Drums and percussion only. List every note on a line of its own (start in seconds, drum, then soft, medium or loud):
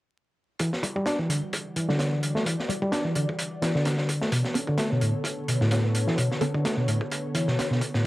0.59 kick loud
0.59 closed hi-hat medium
0.73 snare soft
0.83 kick loud
0.83 closed hi-hat medium
0.96 kick medium
1.06 snare loud
1.06 closed hi-hat medium
1.30 closed hi-hat medium
1.53 kick loud
1.53 closed hi-hat medium
1.76 closed hi-hat medium
1.89 snare soft
1.99 snare loud
1.99 closed hi-hat medium
2.23 closed hi-hat medium
2.36 snare soft
2.46 kick loud
2.46 closed hi-hat loud
2.60 snare soft
2.69 kick medium
2.69 closed hi-hat medium
2.82 kick medium
2.92 snare loud
2.92 closed hi-hat medium
3.15 closed hi-hat medium
3.29 kick medium
3.39 closed hi-hat medium
3.62 snare loud
3.62 closed hi-hat medium
3.76 snare soft
3.85 snare loud
3.85 closed hi-hat medium
3.98 snare soft
4.09 kick loud
4.09 closed hi-hat medium
4.22 snare medium
4.32 kick loud
4.32 closed hi-hat medium
4.45 snare soft
4.54 kick medium
4.54 closed hi-hat medium
4.67 kick medium
4.78 snare loud
4.78 closed hi-hat medium
5.01 closed hi-hat medium
5.24 kick loud
5.24 closed hi-hat medium
5.48 closed hi-hat medium
5.61 snare soft
5.71 snare loud
5.71 closed hi-hat medium
5.95 closed hi-hat medium
6.08 snare soft
6.18 kick loud
6.18 closed hi-hat medium
6.32 snare soft
6.41 kick medium
6.41 closed hi-hat medium
6.55 kick medium
6.65 snare loud
6.65 closed hi-hat medium
6.88 closed hi-hat medium
7.01 kick medium
7.12 closed hi-hat medium
7.35 closed hi-hat medium
7.48 snare soft
7.59 snare loud
7.59 closed hi-hat medium
7.72 snare soft
7.81 kick medium
7.81 closed hi-hat medium
7.94 snare medium